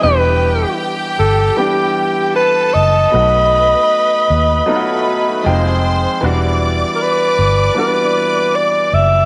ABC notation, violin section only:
X:1
M:4/4
L:1/8
Q:"Swing 16ths" 1/4=78
K:Em
V:1 name="Violin section"
[Gg]6 [Aa]2 | [Bb]4 [Bb]2 [cc']2 | [dd']8 |]